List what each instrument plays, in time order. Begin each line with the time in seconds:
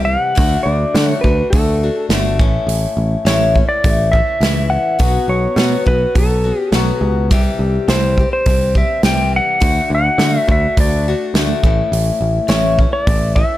Already playing: picked electric bass C2, steel-string acoustic guitar C3 E3 G3 C4 G4
0.05 electric slide guitar F5
0.22 electric slide guitar F#5
0.35 picked electric bass D2, steel-string acoustic guitar D3 A3 D4 F#4, kick, open hi-hat
0.63 picked electric bass D2, electric slide guitar D5
0.94 picked electric bass D3, steel-string acoustic guitar D3 A3 D4 F#4, snare, open hi-hat
1.07 electric slide guitar C#5
1.21 picked electric bass D2, steel-string acoustic guitar D4 F#4, electric slide guitar B4, kick
1.26 steel-string acoustic guitar A3
1.50 picked electric bass D2, steel-string acoustic guitar D3 A3, electric slide guitar A4, kick, open hi-hat
1.55 steel-string acoustic guitar D4 F#4
1.83 steel-string acoustic guitar A3 D4 F#4
2.09 picked electric bass G1, steel-string acoustic guitar D3 A3 D4 F#4, snare, open hi-hat
2.39 picked electric bass A1, steel-string acoustic guitar A2 E3 A3 C#4 E4, kick
2.67 picked electric bass A1, open hi-hat
2.97 picked electric bass A1
3.25 picked electric bass A1, steel-string acoustic guitar A2 E3 A3 C#4 E4, electric slide guitar C#5, snare, open hi-hat
3.54 steel-string acoustic guitar A3 C#4 E4, kick
3.69 electric slide guitar D5
3.84 picked electric bass A1, steel-string acoustic guitar E3 A3 C#4 E4, kick, open hi-hat
4.12 steel-string acoustic guitar A3 C#4 E4, electric slide guitar E5, kick
4.40 picked electric bass C#2, steel-string acoustic guitar A2 E3 A3 C#4 E4, snare, open hi-hat
4.70 electric slide guitar F#5
4.99 picked electric bass B1, steel-string acoustic guitar B2 F#3 B3 C#4 F#4, kick, open hi-hat
5.28 picked electric bass B1, electric slide guitar C#5
5.56 steel-string acoustic guitar B2 F#3 B3 C#4 F#4, picked electric bass B2, snare, open hi-hat
5.85 picked electric bass B1, steel-string acoustic guitar B3 C#4 F#4, electric slide guitar B4, kick
6.15 picked electric bass B1, steel-string acoustic guitar F#3 B3 C#4 F#4, electric slide guitar A4, kick, open hi-hat
6.44 steel-string acoustic guitar B3 C#4 F#4
6.59 electric slide guitar G4
6.72 picked electric bass B1, steel-string acoustic guitar B2 F#3 B3 C#4 F#4, snare, open hi-hat
7.01 picked electric bass C#2
7.31 picked electric bass C2, steel-string acoustic guitar C3 E3 G3 C4 G4, kick, open hi-hat
7.59 picked electric bass C2
7.88 picked electric bass C2, steel-string acoustic guitar C3 E3 G3 C4 G4, electric slide guitar C5, snare, open hi-hat
8.18 steel-string acoustic guitar G3 C4 G4, kick
8.33 electric slide guitar C5
8.46 picked electric bass C2, steel-string acoustic guitar E3 G3 C4, kick, open hi-hat
8.50 steel-string acoustic guitar G4
8.75 steel-string acoustic guitar G3 C4 G4, electric slide guitar E5, kick
9.03 picked electric bass C2, steel-string acoustic guitar C3 E3 G3 C4 G4, electric slide guitar G5, snare, open hi-hat
9.36 electric slide guitar F#5
9.60 picked electric bass D2, steel-string acoustic guitar D3 A3 D4 F#4, kick, open hi-hat
9.90 picked electric bass D2
9.95 electric slide guitar F#5
10.18 picked electric bass D3, steel-string acoustic guitar D3 A3 D4 F#4, snare, open hi-hat
10.40 electric slide guitar E5
10.47 picked electric bass D2, steel-string acoustic guitar A3 D4 F#4, kick
10.52 electric slide guitar E5
10.77 picked electric bass D2, steel-string acoustic guitar D3 A3 D4 F#4, electric slide guitar D5, kick, open hi-hat
11.08 steel-string acoustic guitar A3 D4 F#4
11.34 picked electric bass D2, steel-string acoustic guitar D3 A3 D4 F#4, snare, open hi-hat
11.63 picked electric bass A1, steel-string acoustic guitar A2 E3 A3 C#4 E4, kick
11.92 picked electric bass A1, open hi-hat
12.21 picked electric bass A1
12.48 picked electric bass A1, steel-string acoustic guitar A2 E3 A3 C#4 E4, electric slide guitar C#5, snare, open hi-hat
12.79 steel-string acoustic guitar A3 C#4 E4, kick
12.93 electric slide guitar C#5
13.04 picked electric bass A1, steel-string acoustic guitar E3, electric slide guitar D5, kick, open hi-hat
13.08 steel-string acoustic guitar A3 C#4 E4
13.36 steel-string acoustic guitar A3 C#4 E4, electric slide guitar E5, kick